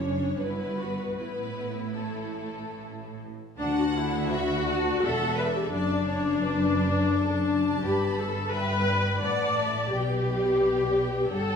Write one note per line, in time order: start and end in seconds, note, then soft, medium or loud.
0.00 0.37 F#1 medium
0.00 0.37 F#2 medium
0.00 0.40 C#4 medium
0.00 0.39 D4 medium
0.00 0.40 C#5 medium
0.40 1.17 G1 medium
0.40 1.17 G2 medium
0.40 1.16 B3 medium
0.40 0.78 E4 medium
0.40 1.15 B4 medium
0.77 1.18 F#4 medium
1.17 3.32 A1 medium
1.17 3.33 A2 medium
1.17 1.97 B3 medium
1.17 3.20 E4 medium
1.17 1.96 B4 medium
1.98 3.20 A3 medium
1.98 3.19 A4 medium
3.58 4.99 D2 medium
3.58 4.99 D2 loud
3.58 3.75 D4 loud
3.58 4.99 F#5 medium
3.58 4.28 F#5 loud
3.58 4.28 A5 medium
3.77 3.95 F#4 loud
3.95 4.32 E4 loud
4.31 5.03 F#4 loud
4.31 4.68 E5 loud
4.31 4.68 B5 medium
4.68 5.04 D5 medium
4.68 5.70 A5 medium
5.03 5.71 E1 medium
5.03 5.72 E2 medium
5.03 5.37 A4 loud
5.03 5.38 E5 medium
5.03 5.38 F#5 loud
5.37 5.45 B4 loud
5.37 5.70 D5 medium
5.37 5.72 E5 medium
5.45 5.54 A4 medium
5.54 5.63 G4 medium
5.63 5.72 A4 medium
5.70 7.78 F#1 medium
5.70 7.78 F#2 loud
5.70 7.77 D4 loud
5.70 7.09 D5 medium
5.70 6.06 D5 medium
5.70 6.05 A5 medium
6.06 6.42 C#5 medium
6.06 7.11 A5 medium
6.43 7.13 B4 medium
7.12 7.47 A4 medium
7.12 8.51 A5 medium
7.48 7.82 D5 medium
7.82 9.18 G1 medium
7.82 9.18 G2 medium
7.82 8.17 G4 loud
7.82 8.51 B4 medium
7.82 8.49 B5 medium
8.17 8.51 A4 loud
8.50 9.21 B4 loud
8.50 8.86 E5 medium
8.50 9.21 G5 medium
8.50 9.19 B5 medium
8.86 9.21 D5 medium
9.20 9.92 A1 medium
9.20 9.92 A2 medium
9.20 9.56 B4 medium
9.20 9.90 D5 loud
9.20 9.56 F#5 medium
9.20 9.92 A5 medium
9.56 9.91 A4 medium
9.56 9.92 E5 medium
9.91 11.26 B1 medium
9.91 11.26 B2 medium
9.91 11.28 G4 loud
9.91 11.25 B4 medium
9.91 11.26 D5 medium
9.91 10.25 G5 medium
10.26 11.56 G5 medium
11.28 11.56 G1 medium
11.28 11.56 G2 medium
11.28 11.56 A4 loud
11.28 11.56 C#5 medium
11.28 11.56 F#5 medium